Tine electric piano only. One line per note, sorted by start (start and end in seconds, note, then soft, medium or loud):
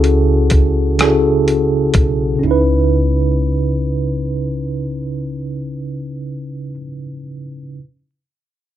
0.00 0.87 C#3 medium
0.00 0.87 C#4 medium
0.00 0.88 E4 medium
0.00 0.88 F#4 medium
0.00 0.88 G#4 medium
0.00 0.89 A4 medium
0.99 2.30 C#3 medium
0.99 2.30 C#4 medium
0.99 2.31 E4 medium
0.99 2.31 F#4 medium
0.99 2.32 G#4 medium
1.03 2.32 A4 medium
2.36 6.66 C#3 medium
2.36 6.70 C#4 medium
2.44 6.74 D#4 soft
2.44 6.76 E4 medium
2.51 6.78 B4 medium